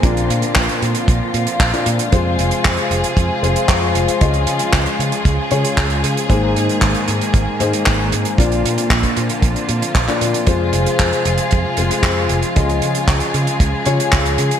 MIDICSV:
0, 0, Header, 1, 5, 480
1, 0, Start_track
1, 0, Key_signature, -4, "minor"
1, 0, Tempo, 521739
1, 34, Time_signature, 4, 2, 24, 8
1, 13429, End_track
2, 0, Start_track
2, 0, Title_t, "Grand piano"
2, 0, Program_c, 0, 0
2, 34, Note_on_c, 0, 65, 68
2, 35, Note_on_c, 0, 46, 72
2, 35, Note_on_c, 0, 58, 68
2, 35, Note_on_c, 0, 62, 68
2, 35, Note_on_c, 0, 74, 78
2, 1205, Note_off_c, 0, 46, 0
2, 1205, Note_off_c, 0, 58, 0
2, 1205, Note_off_c, 0, 65, 0
2, 1206, Note_off_c, 0, 62, 0
2, 1206, Note_off_c, 0, 74, 0
2, 1593, Note_on_c, 0, 46, 69
2, 1593, Note_on_c, 0, 62, 65
2, 1594, Note_on_c, 0, 58, 66
2, 1594, Note_on_c, 0, 65, 61
2, 1594, Note_on_c, 0, 74, 75
2, 1925, Note_off_c, 0, 46, 0
2, 1925, Note_off_c, 0, 58, 0
2, 1925, Note_off_c, 0, 62, 0
2, 1925, Note_off_c, 0, 65, 0
2, 1925, Note_off_c, 0, 74, 0
2, 1953, Note_on_c, 0, 56, 93
2, 1953, Note_on_c, 0, 72, 98
2, 1954, Note_on_c, 0, 60, 87
2, 1954, Note_on_c, 0, 65, 82
2, 3125, Note_off_c, 0, 56, 0
2, 3125, Note_off_c, 0, 60, 0
2, 3125, Note_off_c, 0, 65, 0
2, 3125, Note_off_c, 0, 72, 0
2, 3155, Note_on_c, 0, 56, 79
2, 3155, Note_on_c, 0, 72, 89
2, 3156, Note_on_c, 0, 60, 69
2, 3156, Note_on_c, 0, 65, 72
2, 3846, Note_off_c, 0, 56, 0
2, 3846, Note_off_c, 0, 60, 0
2, 3846, Note_off_c, 0, 65, 0
2, 3846, Note_off_c, 0, 72, 0
2, 3876, Note_on_c, 0, 49, 76
2, 3876, Note_on_c, 0, 56, 67
2, 3876, Note_on_c, 0, 61, 68
2, 3876, Note_on_c, 0, 65, 67
2, 3876, Note_on_c, 0, 75, 78
2, 5046, Note_off_c, 0, 49, 0
2, 5046, Note_off_c, 0, 56, 0
2, 5046, Note_off_c, 0, 61, 0
2, 5046, Note_off_c, 0, 65, 0
2, 5046, Note_off_c, 0, 75, 0
2, 5073, Note_on_c, 0, 73, 84
2, 5074, Note_on_c, 0, 49, 73
2, 5074, Note_on_c, 0, 56, 67
2, 5074, Note_on_c, 0, 61, 66
2, 5074, Note_on_c, 0, 65, 66
2, 5765, Note_off_c, 0, 49, 0
2, 5765, Note_off_c, 0, 56, 0
2, 5765, Note_off_c, 0, 61, 0
2, 5765, Note_off_c, 0, 65, 0
2, 5765, Note_off_c, 0, 73, 0
2, 5793, Note_on_c, 0, 63, 80
2, 5793, Note_on_c, 0, 68, 81
2, 5793, Note_on_c, 0, 72, 99
2, 5794, Note_on_c, 0, 44, 91
2, 5794, Note_on_c, 0, 58, 85
2, 6965, Note_off_c, 0, 44, 0
2, 6965, Note_off_c, 0, 58, 0
2, 6965, Note_off_c, 0, 63, 0
2, 6965, Note_off_c, 0, 68, 0
2, 6965, Note_off_c, 0, 72, 0
2, 6994, Note_on_c, 0, 58, 73
2, 6994, Note_on_c, 0, 63, 72
2, 6994, Note_on_c, 0, 68, 76
2, 6995, Note_on_c, 0, 44, 81
2, 6995, Note_on_c, 0, 72, 87
2, 7685, Note_off_c, 0, 58, 0
2, 7685, Note_off_c, 0, 63, 0
2, 7685, Note_off_c, 0, 68, 0
2, 7686, Note_off_c, 0, 44, 0
2, 7686, Note_off_c, 0, 72, 0
2, 7714, Note_on_c, 0, 58, 68
2, 7715, Note_on_c, 0, 46, 74
2, 7715, Note_on_c, 0, 62, 69
2, 7715, Note_on_c, 0, 65, 68
2, 7715, Note_on_c, 0, 74, 83
2, 8885, Note_off_c, 0, 58, 0
2, 8886, Note_off_c, 0, 46, 0
2, 8886, Note_off_c, 0, 62, 0
2, 8886, Note_off_c, 0, 65, 0
2, 8886, Note_off_c, 0, 74, 0
2, 9275, Note_on_c, 0, 46, 67
2, 9275, Note_on_c, 0, 58, 62
2, 9275, Note_on_c, 0, 62, 63
2, 9275, Note_on_c, 0, 65, 64
2, 9275, Note_on_c, 0, 74, 76
2, 9606, Note_off_c, 0, 46, 0
2, 9606, Note_off_c, 0, 58, 0
2, 9606, Note_off_c, 0, 62, 0
2, 9606, Note_off_c, 0, 65, 0
2, 9606, Note_off_c, 0, 74, 0
2, 9634, Note_on_c, 0, 56, 92
2, 9634, Note_on_c, 0, 60, 79
2, 9634, Note_on_c, 0, 65, 80
2, 9634, Note_on_c, 0, 72, 98
2, 10805, Note_off_c, 0, 56, 0
2, 10805, Note_off_c, 0, 60, 0
2, 10805, Note_off_c, 0, 65, 0
2, 10805, Note_off_c, 0, 72, 0
2, 10836, Note_on_c, 0, 56, 81
2, 10836, Note_on_c, 0, 60, 74
2, 10836, Note_on_c, 0, 65, 71
2, 10836, Note_on_c, 0, 72, 88
2, 11526, Note_off_c, 0, 56, 0
2, 11526, Note_off_c, 0, 60, 0
2, 11526, Note_off_c, 0, 65, 0
2, 11526, Note_off_c, 0, 72, 0
2, 11555, Note_on_c, 0, 56, 69
2, 11556, Note_on_c, 0, 49, 75
2, 11556, Note_on_c, 0, 61, 68
2, 11556, Note_on_c, 0, 65, 70
2, 11556, Note_on_c, 0, 75, 83
2, 12726, Note_off_c, 0, 49, 0
2, 12726, Note_off_c, 0, 56, 0
2, 12726, Note_off_c, 0, 61, 0
2, 12726, Note_off_c, 0, 65, 0
2, 12726, Note_off_c, 0, 75, 0
2, 12755, Note_on_c, 0, 49, 74
2, 12755, Note_on_c, 0, 56, 68
2, 12755, Note_on_c, 0, 61, 65
2, 12755, Note_on_c, 0, 65, 69
2, 12755, Note_on_c, 0, 73, 84
2, 13429, Note_off_c, 0, 49, 0
2, 13429, Note_off_c, 0, 56, 0
2, 13429, Note_off_c, 0, 61, 0
2, 13429, Note_off_c, 0, 65, 0
2, 13429, Note_off_c, 0, 73, 0
2, 13429, End_track
3, 0, Start_track
3, 0, Title_t, "String section"
3, 0, Program_c, 1, 48
3, 0, Note_on_c, 1, 58, 70
3, 0, Note_on_c, 1, 60, 72
3, 33, Note_on_c, 1, 50, 74
3, 33, Note_on_c, 1, 53, 70
3, 34, Note_on_c, 1, 65, 89
3, 1917, Note_off_c, 1, 58, 0
3, 1917, Note_off_c, 1, 60, 0
3, 1935, Note_off_c, 1, 50, 0
3, 1935, Note_off_c, 1, 53, 0
3, 1954, Note_on_c, 1, 53, 72
3, 1955, Note_on_c, 1, 48, 80
3, 1955, Note_on_c, 1, 56, 68
3, 1955, Note_on_c, 1, 68, 84
3, 3855, Note_off_c, 1, 48, 0
3, 3855, Note_off_c, 1, 68, 0
3, 3876, Note_on_c, 1, 68, 87
3, 3877, Note_on_c, 1, 49, 78
3, 5757, Note_off_c, 1, 53, 0
3, 5757, Note_off_c, 1, 65, 0
3, 5776, Note_off_c, 1, 49, 0
3, 5795, Note_on_c, 1, 51, 76
3, 5795, Note_on_c, 1, 58, 72
3, 5796, Note_on_c, 1, 60, 71
3, 7678, Note_off_c, 1, 56, 0
3, 7678, Note_off_c, 1, 68, 0
3, 7696, Note_off_c, 1, 51, 0
3, 7696, Note_off_c, 1, 58, 0
3, 7716, Note_on_c, 1, 58, 72
3, 7717, Note_on_c, 1, 50, 80
3, 7717, Note_on_c, 1, 53, 71
3, 7717, Note_on_c, 1, 65, 82
3, 9598, Note_off_c, 1, 60, 0
3, 9616, Note_off_c, 1, 50, 0
3, 9616, Note_off_c, 1, 58, 0
3, 9635, Note_on_c, 1, 68, 85
3, 9636, Note_on_c, 1, 48, 77
3, 9636, Note_on_c, 1, 56, 68
3, 11535, Note_off_c, 1, 68, 0
3, 11536, Note_off_c, 1, 48, 0
3, 11554, Note_on_c, 1, 49, 79
3, 11555, Note_on_c, 1, 68, 86
3, 13429, Note_off_c, 1, 49, 0
3, 13429, Note_off_c, 1, 53, 0
3, 13429, Note_off_c, 1, 56, 0
3, 13429, Note_off_c, 1, 65, 0
3, 13429, Note_off_c, 1, 68, 0
3, 13429, End_track
4, 0, Start_track
4, 0, Title_t, "Fingered electric bass"
4, 0, Program_c, 2, 33
4, 30, Note_on_c, 2, 34, 100
4, 248, Note_off_c, 2, 34, 0
4, 273, Note_on_c, 2, 46, 90
4, 382, Note_off_c, 2, 46, 0
4, 514, Note_on_c, 2, 34, 84
4, 622, Note_off_c, 2, 34, 0
4, 754, Note_on_c, 2, 46, 77
4, 862, Note_off_c, 2, 46, 0
4, 993, Note_on_c, 2, 34, 95
4, 1102, Note_off_c, 2, 34, 0
4, 1233, Note_on_c, 2, 46, 93
4, 1342, Note_off_c, 2, 46, 0
4, 1470, Note_on_c, 2, 34, 93
4, 1580, Note_off_c, 2, 34, 0
4, 1714, Note_on_c, 2, 46, 84
4, 1822, Note_off_c, 2, 46, 0
4, 1957, Note_on_c, 2, 41, 95
4, 2171, Note_off_c, 2, 41, 0
4, 2193, Note_on_c, 2, 29, 89
4, 2301, Note_off_c, 2, 29, 0
4, 2439, Note_on_c, 2, 41, 78
4, 2544, Note_off_c, 2, 41, 0
4, 2673, Note_on_c, 2, 29, 78
4, 2781, Note_off_c, 2, 29, 0
4, 2914, Note_on_c, 2, 41, 92
4, 3022, Note_off_c, 2, 41, 0
4, 3153, Note_on_c, 2, 29, 100
4, 3261, Note_off_c, 2, 29, 0
4, 3391, Note_on_c, 2, 41, 77
4, 3609, Note_off_c, 2, 41, 0
4, 3633, Note_on_c, 2, 29, 82
4, 3742, Note_off_c, 2, 29, 0
4, 3876, Note_on_c, 2, 37, 97
4, 4091, Note_off_c, 2, 37, 0
4, 4114, Note_on_c, 2, 49, 88
4, 4222, Note_off_c, 2, 49, 0
4, 4352, Note_on_c, 2, 37, 83
4, 4461, Note_off_c, 2, 37, 0
4, 4593, Note_on_c, 2, 49, 77
4, 4702, Note_off_c, 2, 49, 0
4, 4832, Note_on_c, 2, 37, 98
4, 4941, Note_off_c, 2, 37, 0
4, 5074, Note_on_c, 2, 49, 97
4, 5182, Note_off_c, 2, 49, 0
4, 5313, Note_on_c, 2, 37, 80
4, 5529, Note_off_c, 2, 37, 0
4, 5554, Note_on_c, 2, 49, 78
4, 5662, Note_off_c, 2, 49, 0
4, 5793, Note_on_c, 2, 32, 95
4, 6010, Note_off_c, 2, 32, 0
4, 6033, Note_on_c, 2, 44, 88
4, 6142, Note_off_c, 2, 44, 0
4, 6271, Note_on_c, 2, 32, 83
4, 6381, Note_off_c, 2, 32, 0
4, 6513, Note_on_c, 2, 44, 77
4, 6622, Note_off_c, 2, 44, 0
4, 6751, Note_on_c, 2, 32, 97
4, 6861, Note_off_c, 2, 32, 0
4, 6994, Note_on_c, 2, 44, 96
4, 7102, Note_off_c, 2, 44, 0
4, 7239, Note_on_c, 2, 32, 81
4, 7453, Note_off_c, 2, 32, 0
4, 7474, Note_on_c, 2, 44, 82
4, 7582, Note_off_c, 2, 44, 0
4, 7712, Note_on_c, 2, 34, 100
4, 7929, Note_off_c, 2, 34, 0
4, 7954, Note_on_c, 2, 46, 91
4, 8062, Note_off_c, 2, 46, 0
4, 8189, Note_on_c, 2, 34, 79
4, 8300, Note_off_c, 2, 34, 0
4, 8434, Note_on_c, 2, 46, 76
4, 8542, Note_off_c, 2, 46, 0
4, 8670, Note_on_c, 2, 34, 99
4, 8780, Note_off_c, 2, 34, 0
4, 8914, Note_on_c, 2, 46, 99
4, 9022, Note_off_c, 2, 46, 0
4, 9154, Note_on_c, 2, 34, 98
4, 9262, Note_off_c, 2, 34, 0
4, 9395, Note_on_c, 2, 46, 86
4, 9503, Note_off_c, 2, 46, 0
4, 9634, Note_on_c, 2, 41, 94
4, 9850, Note_off_c, 2, 41, 0
4, 9875, Note_on_c, 2, 29, 91
4, 9983, Note_off_c, 2, 29, 0
4, 10114, Note_on_c, 2, 41, 82
4, 10222, Note_off_c, 2, 41, 0
4, 10354, Note_on_c, 2, 29, 78
4, 10462, Note_off_c, 2, 29, 0
4, 10603, Note_on_c, 2, 41, 99
4, 10707, Note_off_c, 2, 41, 0
4, 10833, Note_on_c, 2, 29, 97
4, 10941, Note_off_c, 2, 29, 0
4, 11066, Note_on_c, 2, 41, 76
4, 11286, Note_off_c, 2, 41, 0
4, 11314, Note_on_c, 2, 29, 81
4, 11422, Note_off_c, 2, 29, 0
4, 11559, Note_on_c, 2, 37, 100
4, 11773, Note_off_c, 2, 37, 0
4, 11794, Note_on_c, 2, 49, 92
4, 11902, Note_off_c, 2, 49, 0
4, 12030, Note_on_c, 2, 37, 78
4, 12140, Note_off_c, 2, 37, 0
4, 12274, Note_on_c, 2, 49, 77
4, 12382, Note_off_c, 2, 49, 0
4, 12512, Note_on_c, 2, 37, 96
4, 12621, Note_off_c, 2, 37, 0
4, 12754, Note_on_c, 2, 49, 97
4, 12862, Note_off_c, 2, 49, 0
4, 12998, Note_on_c, 2, 37, 77
4, 13212, Note_off_c, 2, 37, 0
4, 13234, Note_on_c, 2, 49, 84
4, 13342, Note_off_c, 2, 49, 0
4, 13429, End_track
5, 0, Start_track
5, 0, Title_t, "Drums"
5, 31, Note_on_c, 9, 36, 120
5, 31, Note_on_c, 9, 42, 86
5, 123, Note_off_c, 9, 36, 0
5, 123, Note_off_c, 9, 42, 0
5, 157, Note_on_c, 9, 42, 51
5, 249, Note_off_c, 9, 42, 0
5, 279, Note_on_c, 9, 42, 73
5, 371, Note_off_c, 9, 42, 0
5, 389, Note_on_c, 9, 42, 59
5, 481, Note_off_c, 9, 42, 0
5, 509, Note_on_c, 9, 39, 122
5, 515, Note_on_c, 9, 36, 110
5, 519, Note_on_c, 9, 42, 78
5, 601, Note_off_c, 9, 39, 0
5, 607, Note_off_c, 9, 36, 0
5, 611, Note_off_c, 9, 42, 0
5, 635, Note_on_c, 9, 42, 55
5, 727, Note_off_c, 9, 42, 0
5, 758, Note_on_c, 9, 42, 75
5, 850, Note_off_c, 9, 42, 0
5, 871, Note_on_c, 9, 42, 63
5, 963, Note_off_c, 9, 42, 0
5, 994, Note_on_c, 9, 36, 127
5, 996, Note_on_c, 9, 42, 87
5, 1086, Note_off_c, 9, 36, 0
5, 1088, Note_off_c, 9, 42, 0
5, 1233, Note_on_c, 9, 42, 74
5, 1325, Note_off_c, 9, 42, 0
5, 1350, Note_on_c, 9, 42, 58
5, 1442, Note_off_c, 9, 42, 0
5, 1471, Note_on_c, 9, 36, 115
5, 1472, Note_on_c, 9, 42, 77
5, 1476, Note_on_c, 9, 39, 110
5, 1563, Note_off_c, 9, 36, 0
5, 1564, Note_off_c, 9, 42, 0
5, 1568, Note_off_c, 9, 39, 0
5, 1598, Note_on_c, 9, 42, 51
5, 1690, Note_off_c, 9, 42, 0
5, 1712, Note_on_c, 9, 42, 95
5, 1804, Note_off_c, 9, 42, 0
5, 1833, Note_on_c, 9, 42, 69
5, 1925, Note_off_c, 9, 42, 0
5, 1954, Note_on_c, 9, 42, 78
5, 1957, Note_on_c, 9, 36, 114
5, 2046, Note_off_c, 9, 42, 0
5, 2049, Note_off_c, 9, 36, 0
5, 2197, Note_on_c, 9, 42, 81
5, 2289, Note_off_c, 9, 42, 0
5, 2310, Note_on_c, 9, 42, 60
5, 2402, Note_off_c, 9, 42, 0
5, 2437, Note_on_c, 9, 42, 84
5, 2438, Note_on_c, 9, 36, 111
5, 2438, Note_on_c, 9, 39, 115
5, 2529, Note_off_c, 9, 42, 0
5, 2530, Note_off_c, 9, 36, 0
5, 2530, Note_off_c, 9, 39, 0
5, 2547, Note_on_c, 9, 42, 55
5, 2639, Note_off_c, 9, 42, 0
5, 2678, Note_on_c, 9, 42, 89
5, 2770, Note_off_c, 9, 42, 0
5, 2795, Note_on_c, 9, 42, 61
5, 2887, Note_off_c, 9, 42, 0
5, 2914, Note_on_c, 9, 36, 112
5, 2918, Note_on_c, 9, 42, 83
5, 3006, Note_off_c, 9, 36, 0
5, 3010, Note_off_c, 9, 42, 0
5, 3163, Note_on_c, 9, 42, 75
5, 3255, Note_off_c, 9, 42, 0
5, 3275, Note_on_c, 9, 42, 68
5, 3367, Note_off_c, 9, 42, 0
5, 3391, Note_on_c, 9, 36, 119
5, 3392, Note_on_c, 9, 42, 88
5, 3394, Note_on_c, 9, 39, 121
5, 3483, Note_off_c, 9, 36, 0
5, 3484, Note_off_c, 9, 42, 0
5, 3486, Note_off_c, 9, 39, 0
5, 3636, Note_on_c, 9, 42, 91
5, 3728, Note_off_c, 9, 42, 0
5, 3757, Note_on_c, 9, 42, 66
5, 3849, Note_off_c, 9, 42, 0
5, 3873, Note_on_c, 9, 42, 95
5, 3877, Note_on_c, 9, 36, 108
5, 3965, Note_off_c, 9, 42, 0
5, 3969, Note_off_c, 9, 36, 0
5, 3990, Note_on_c, 9, 42, 51
5, 4082, Note_off_c, 9, 42, 0
5, 4111, Note_on_c, 9, 42, 86
5, 4203, Note_off_c, 9, 42, 0
5, 4225, Note_on_c, 9, 42, 70
5, 4317, Note_off_c, 9, 42, 0
5, 4352, Note_on_c, 9, 36, 105
5, 4353, Note_on_c, 9, 39, 99
5, 4366, Note_on_c, 9, 42, 81
5, 4444, Note_off_c, 9, 36, 0
5, 4445, Note_off_c, 9, 39, 0
5, 4458, Note_off_c, 9, 42, 0
5, 4471, Note_on_c, 9, 42, 51
5, 4563, Note_off_c, 9, 42, 0
5, 4602, Note_on_c, 9, 42, 89
5, 4694, Note_off_c, 9, 42, 0
5, 4712, Note_on_c, 9, 42, 62
5, 4804, Note_off_c, 9, 42, 0
5, 4832, Note_on_c, 9, 36, 105
5, 4833, Note_on_c, 9, 42, 74
5, 4924, Note_off_c, 9, 36, 0
5, 4925, Note_off_c, 9, 42, 0
5, 5066, Note_on_c, 9, 42, 78
5, 5158, Note_off_c, 9, 42, 0
5, 5194, Note_on_c, 9, 42, 68
5, 5286, Note_off_c, 9, 42, 0
5, 5312, Note_on_c, 9, 36, 116
5, 5312, Note_on_c, 9, 42, 78
5, 5316, Note_on_c, 9, 39, 101
5, 5404, Note_off_c, 9, 36, 0
5, 5404, Note_off_c, 9, 42, 0
5, 5408, Note_off_c, 9, 39, 0
5, 5427, Note_on_c, 9, 42, 54
5, 5519, Note_off_c, 9, 42, 0
5, 5556, Note_on_c, 9, 42, 97
5, 5648, Note_off_c, 9, 42, 0
5, 5679, Note_on_c, 9, 42, 66
5, 5771, Note_off_c, 9, 42, 0
5, 5793, Note_on_c, 9, 36, 119
5, 5795, Note_on_c, 9, 42, 87
5, 5885, Note_off_c, 9, 36, 0
5, 5887, Note_off_c, 9, 42, 0
5, 6039, Note_on_c, 9, 42, 80
5, 6131, Note_off_c, 9, 42, 0
5, 6158, Note_on_c, 9, 42, 60
5, 6250, Note_off_c, 9, 42, 0
5, 6269, Note_on_c, 9, 42, 81
5, 6271, Note_on_c, 9, 36, 102
5, 6273, Note_on_c, 9, 39, 112
5, 6361, Note_off_c, 9, 42, 0
5, 6363, Note_off_c, 9, 36, 0
5, 6365, Note_off_c, 9, 39, 0
5, 6390, Note_on_c, 9, 42, 52
5, 6482, Note_off_c, 9, 42, 0
5, 6511, Note_on_c, 9, 42, 79
5, 6603, Note_off_c, 9, 42, 0
5, 6637, Note_on_c, 9, 42, 72
5, 6729, Note_off_c, 9, 42, 0
5, 6751, Note_on_c, 9, 36, 117
5, 6753, Note_on_c, 9, 42, 81
5, 6843, Note_off_c, 9, 36, 0
5, 6845, Note_off_c, 9, 42, 0
5, 6993, Note_on_c, 9, 42, 87
5, 7085, Note_off_c, 9, 42, 0
5, 7115, Note_on_c, 9, 42, 72
5, 7207, Note_off_c, 9, 42, 0
5, 7231, Note_on_c, 9, 39, 103
5, 7238, Note_on_c, 9, 42, 81
5, 7239, Note_on_c, 9, 36, 97
5, 7323, Note_off_c, 9, 39, 0
5, 7330, Note_off_c, 9, 42, 0
5, 7331, Note_off_c, 9, 36, 0
5, 7473, Note_on_c, 9, 42, 89
5, 7565, Note_off_c, 9, 42, 0
5, 7591, Note_on_c, 9, 42, 60
5, 7683, Note_off_c, 9, 42, 0
5, 7713, Note_on_c, 9, 36, 118
5, 7725, Note_on_c, 9, 42, 94
5, 7805, Note_off_c, 9, 36, 0
5, 7817, Note_off_c, 9, 42, 0
5, 7836, Note_on_c, 9, 42, 51
5, 7928, Note_off_c, 9, 42, 0
5, 7963, Note_on_c, 9, 42, 91
5, 8055, Note_off_c, 9, 42, 0
5, 8076, Note_on_c, 9, 42, 66
5, 8168, Note_off_c, 9, 42, 0
5, 8190, Note_on_c, 9, 36, 104
5, 8195, Note_on_c, 9, 42, 88
5, 8196, Note_on_c, 9, 39, 110
5, 8282, Note_off_c, 9, 36, 0
5, 8287, Note_off_c, 9, 42, 0
5, 8288, Note_off_c, 9, 39, 0
5, 8311, Note_on_c, 9, 42, 59
5, 8312, Note_on_c, 9, 36, 59
5, 8403, Note_off_c, 9, 42, 0
5, 8404, Note_off_c, 9, 36, 0
5, 8432, Note_on_c, 9, 42, 84
5, 8524, Note_off_c, 9, 42, 0
5, 8551, Note_on_c, 9, 42, 64
5, 8643, Note_off_c, 9, 42, 0
5, 8670, Note_on_c, 9, 36, 115
5, 8672, Note_on_c, 9, 42, 97
5, 8762, Note_off_c, 9, 36, 0
5, 8764, Note_off_c, 9, 42, 0
5, 8795, Note_on_c, 9, 42, 53
5, 8887, Note_off_c, 9, 42, 0
5, 8911, Note_on_c, 9, 42, 77
5, 9003, Note_off_c, 9, 42, 0
5, 9038, Note_on_c, 9, 42, 65
5, 9130, Note_off_c, 9, 42, 0
5, 9154, Note_on_c, 9, 36, 110
5, 9157, Note_on_c, 9, 42, 89
5, 9158, Note_on_c, 9, 39, 107
5, 9246, Note_off_c, 9, 36, 0
5, 9249, Note_off_c, 9, 42, 0
5, 9250, Note_off_c, 9, 39, 0
5, 9277, Note_on_c, 9, 39, 34
5, 9277, Note_on_c, 9, 42, 54
5, 9369, Note_off_c, 9, 39, 0
5, 9369, Note_off_c, 9, 42, 0
5, 9396, Note_on_c, 9, 42, 85
5, 9488, Note_off_c, 9, 42, 0
5, 9516, Note_on_c, 9, 42, 69
5, 9608, Note_off_c, 9, 42, 0
5, 9629, Note_on_c, 9, 42, 90
5, 9634, Note_on_c, 9, 36, 116
5, 9721, Note_off_c, 9, 42, 0
5, 9726, Note_off_c, 9, 36, 0
5, 9871, Note_on_c, 9, 42, 82
5, 9963, Note_off_c, 9, 42, 0
5, 9995, Note_on_c, 9, 42, 66
5, 10087, Note_off_c, 9, 42, 0
5, 10110, Note_on_c, 9, 42, 91
5, 10115, Note_on_c, 9, 36, 117
5, 10116, Note_on_c, 9, 39, 113
5, 10202, Note_off_c, 9, 42, 0
5, 10207, Note_off_c, 9, 36, 0
5, 10208, Note_off_c, 9, 39, 0
5, 10238, Note_on_c, 9, 42, 58
5, 10330, Note_off_c, 9, 42, 0
5, 10353, Note_on_c, 9, 42, 90
5, 10445, Note_off_c, 9, 42, 0
5, 10466, Note_on_c, 9, 42, 67
5, 10558, Note_off_c, 9, 42, 0
5, 10587, Note_on_c, 9, 42, 80
5, 10604, Note_on_c, 9, 36, 115
5, 10679, Note_off_c, 9, 42, 0
5, 10696, Note_off_c, 9, 36, 0
5, 10828, Note_on_c, 9, 42, 87
5, 10920, Note_off_c, 9, 42, 0
5, 10956, Note_on_c, 9, 42, 72
5, 11048, Note_off_c, 9, 42, 0
5, 11066, Note_on_c, 9, 36, 122
5, 11073, Note_on_c, 9, 42, 85
5, 11074, Note_on_c, 9, 39, 104
5, 11158, Note_off_c, 9, 36, 0
5, 11165, Note_off_c, 9, 42, 0
5, 11166, Note_off_c, 9, 39, 0
5, 11310, Note_on_c, 9, 42, 86
5, 11402, Note_off_c, 9, 42, 0
5, 11430, Note_on_c, 9, 42, 61
5, 11522, Note_off_c, 9, 42, 0
5, 11556, Note_on_c, 9, 42, 86
5, 11560, Note_on_c, 9, 36, 116
5, 11648, Note_off_c, 9, 42, 0
5, 11652, Note_off_c, 9, 36, 0
5, 11679, Note_on_c, 9, 42, 50
5, 11771, Note_off_c, 9, 42, 0
5, 11794, Note_on_c, 9, 42, 89
5, 11886, Note_off_c, 9, 42, 0
5, 11911, Note_on_c, 9, 42, 64
5, 12003, Note_off_c, 9, 42, 0
5, 12031, Note_on_c, 9, 36, 127
5, 12034, Note_on_c, 9, 42, 88
5, 12036, Note_on_c, 9, 39, 107
5, 12123, Note_off_c, 9, 36, 0
5, 12126, Note_off_c, 9, 42, 0
5, 12128, Note_off_c, 9, 39, 0
5, 12145, Note_on_c, 9, 42, 56
5, 12237, Note_off_c, 9, 42, 0
5, 12275, Note_on_c, 9, 42, 76
5, 12367, Note_off_c, 9, 42, 0
5, 12395, Note_on_c, 9, 42, 67
5, 12487, Note_off_c, 9, 42, 0
5, 12512, Note_on_c, 9, 36, 125
5, 12516, Note_on_c, 9, 42, 94
5, 12604, Note_off_c, 9, 36, 0
5, 12608, Note_off_c, 9, 42, 0
5, 12747, Note_on_c, 9, 42, 80
5, 12839, Note_off_c, 9, 42, 0
5, 12880, Note_on_c, 9, 42, 63
5, 12972, Note_off_c, 9, 42, 0
5, 12993, Note_on_c, 9, 39, 110
5, 12994, Note_on_c, 9, 42, 92
5, 12998, Note_on_c, 9, 36, 127
5, 13085, Note_off_c, 9, 39, 0
5, 13086, Note_off_c, 9, 42, 0
5, 13090, Note_off_c, 9, 36, 0
5, 13114, Note_on_c, 9, 42, 56
5, 13206, Note_off_c, 9, 42, 0
5, 13231, Note_on_c, 9, 42, 94
5, 13323, Note_off_c, 9, 42, 0
5, 13351, Note_on_c, 9, 42, 65
5, 13429, Note_off_c, 9, 42, 0
5, 13429, End_track
0, 0, End_of_file